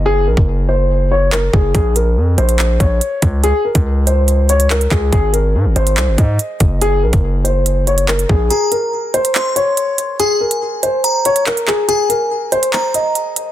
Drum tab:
HH |----------------|x-x---xx--x-x-x-|x--x--x-x-xx-x--|x-x---xx--x-x-x-|
CP |------------x---|--------x-------|------------x-x-|--------x-------|
BD |---o----------o-|o---------o---o-|---o----------o-|o---------o---o-|

HH |x--x--x-x-xx-x--|x-x---xx--x-x-x-|x--x--x-x-xx-x--|x-x---xx--x-x-x-|
CP |------------x---|--------x-------|------------x-x-|--------x-------|
BD |---o----------o-|----------------|----------------|----------------|